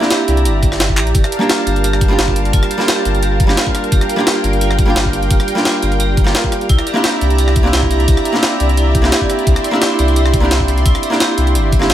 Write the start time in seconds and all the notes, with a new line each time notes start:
Already playing: E4 G4 D5 E5 G5 A#5
0.00 A#3 C4 D4 E4, snare
0.04 G4
0.10 G4, snare, closed hi-hat
0.28 C2 G5, closed hi-hat
0.37 closed hi-hat
0.45 G1 G4, closed hi-hat
0.63 G4, kick, closed hi-hat
0.72 cross-stick, snare
0.80 D5, snare, closed hi-hat
0.89 kick
0.97 A#1 G4, clap, closed hi-hat
1.07 closed hi-hat
1.15 G1 G4 A#4 F5 A5, kick, closed hi-hat
1.24 cross-stick, closed hi-hat
1.32 D5, closed hi-hat
1.39 G3 A#3 D4 F4, cross-stick
1.43 G4
1.49 F4, snare, closed hi-hat
1.66 G1 G4, closed hi-hat
1.76 closed hi-hat
1.84 G4, closed hi-hat
1.93 cross-stick
2.01 G5, kick, closed hi-hat
2.08 G3 A#3 D4 F4
2.13 G4
2.18 G1 G4, snare, closed hi-hat
2.28 kick
2.36 D5, closed hi-hat
2.45 closed hi-hat
2.53 G1 F4, kick, closed hi-hat
2.63 cross-stick, closed hi-hat
2.71 G4, closed hi-hat
2.78 G3 A#3 D4 F4, snare
2.82 G4
2.88 G4, snare, closed hi-hat
3.05 G1 G5, closed hi-hat
3.15 closed hi-hat
3.23 G4, closed hi-hat
3.40 D5, kick, closed hi-hat
3.47 G3 A#3 D4 F4, cross-stick, snare
3.51 G4
3.57 F4, snare, closed hi-hat
3.67 kick
3.75 G4, cross-stick, closed hi-hat
3.84 closed hi-hat
3.92 G1 G4 G5, kick, closed hi-hat
4.01 cross-stick, closed hi-hat
4.09 G5, closed hi-hat
4.16 G3 A#3 D4 F4, cross-stick
4.20 G4
4.27 G4, snare, closed hi-hat
4.44 G1 D5, closed hi-hat
4.53 closed hi-hat
4.61 F4, closed hi-hat
4.71 cross-stick
4.79 G4, kick, closed hi-hat
4.86 G3 A#3 D4 F4
4.90 G4
4.96 G1 G4, snare, closed hi-hat
5.05 kick
5.13 G5, closed hi-hat
5.23 closed hi-hat
5.31 G1 G4, kick, closed hi-hat
5.40 cross-stick, closed hi-hat
5.48 D5, closed hi-hat
5.55 G3 A#3 D4 F4, snare
5.59 G4
5.65 F4, snare, closed hi-hat
5.82 G1 G4, closed hi-hat
5.92 closed hi-hat
6.00 G4, closed hi-hat
6.17 G5, kick, closed hi-hat
6.24 G3 A#3 F4, cross-stick, snare
6.29 G4
6.35 G4, snare, closed hi-hat
6.44 kick
6.52 D5, cross-stick, closed hi-hat
6.61 closed hi-hat
6.69 C2 E4 D5 E5 A#5, kick, closed hi-hat
6.79 cross-stick, closed hi-hat
6.87 G4, closed hi-hat
6.94 A#3 C4 D4 E4, cross-stick
6.98 G4
7.04 G4, snare, closed hi-hat
7.21 C2 G5, closed hi-hat
7.30 closed hi-hat
7.38 G4, closed hi-hat
7.48 cross-stick
7.56 D5, kick, closed hi-hat
7.63 A#3 C4 D4 E4
7.67 G4
7.73 C2 E4, snare, closed hi-hat
7.83 kick
7.91 G4, closed hi-hat
8.00 closed hi-hat
8.08 C2 G4, kick, closed hi-hat
8.17 cross-stick, closed hi-hat
8.25 G5, closed hi-hat
8.32 A#3 C4 D4 E4, snare
8.37 G4
8.43 G4, snare, closed hi-hat
8.60 C2 D5, closed hi-hat
8.69 closed hi-hat
8.77 E4, closed hi-hat
8.95 G4, kick, closed hi-hat
9.02 A#3 C4 D4 E4, cross-stick, snare
9.06 G4
9.12 G4, snare, closed hi-hat
9.21 kick
9.29 G5, cross-stick, closed hi-hat
9.39 closed hi-hat
9.47 C2 G4 C6, kick, closed hi-hat
9.56 cross-stick, closed hi-hat
9.64 D5, closed hi-hat
9.71 A#3 C4 D4 E4, cross-stick
9.75 G4
9.81 E4, snare, closed hi-hat
9.99 C2 G4, closed hi-hat
10.08 closed hi-hat
10.16 G4, closed hi-hat
10.26 cross-stick
10.34 G5, kick, closed hi-hat
10.40 A#3 C4 D4 E4
10.45 G4
10.51 C2 G4, snare, closed hi-hat
10.60 kick
10.68 D5, closed hi-hat
10.78 closed hi-hat
10.86 C2 E4, kick, closed hi-hat
10.95 cross-stick, closed hi-hat
11.03 G4, closed hi-hat
11.10 A#3 C4 D4 E4, snare
11.14 G4
11.20 G4, snare, closed hi-hat
11.38 C2 G5, closed hi-hat
11.47 closed hi-hat
11.55 G1 G4, closed hi-hat
11.72 D5, kick, closed hi-hat
11.79 A#3 C4 D4 E4, cross-stick, snare
11.84 G4
11.90 E4, snare, closed hi-hat